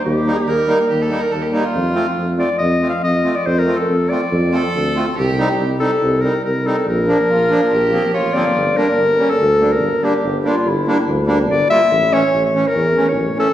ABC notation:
X:1
M:4/4
L:1/16
Q:1/4=142
K:none
V:1 name="Clarinet"
G8 z8 | z6 d2 _e3 f e3 d | c _B2 A3 d8 z2 | z6 A4 _B2 B2 A2 |
_B12 _d2 =d2- | d2 _B4- B A4 B3 G2- | G3/2 G/2 F2 E6 z2 d2 e2- | e2 ^c3 c2 _B4 c3 A2 |]
V:2 name="Violin"
z4 _B4 G A2 B A G2 F- | F4- F z8 z3 | z8 z2 A6 | G4- G z8 z3 |
z4 F4 G4 F4 | z16 | z16 | z16 |]
V:3 name="Accordion"
z2 [G,_B,_E] z3 [G,B,E] z3 [G,B,E] z3 [G,B,E] z | z2 [A,CF] z3 [A,CF] z3 [A,CF] z3 [A,CF] z | z2 [A,CF] z3 [A,CF] z3 [A,CF] z3 [A,CF] z | z2 [G,C_E] z3 [G,CE] z3 [G,CE] z3 [G,CE] z |
z2 [F,_B,D] z3 [F,B,D] z3 [F,B,C] z3 [F,B,C] z | z2 [G,_B,D] z3 [G,B,^C] z3 [G,B,D] z3 [G,B,D] z | z2 [G,_B,D] z3 [G,B,D] z3 [G,B,D] z3 [G,B,F] z | z2 [E,A,^C] z3 [E,A,C] z3 [E,A,C] z3 [E,A,C] z |]
V:4 name="Tuba" clef=bass
_E,,4 E,,4 E,,4 E,,4 | F,,4 F,,4 F,,4 F,,4 | F,,4 F,,4 F,,4 D,,4 | C,,4 C,,4 C,,4 C,,4 |
_B,,,4 B,,,4 B,,,4 A,,,2 G,,,2 | G,,,4 G,,,4 D,,4 G,,,2 z2 | G,,,4 G,,,4 D,,4 G,,,2 z2 | A,,,4 A,,,4 E,,4 A,,,2 z2 |]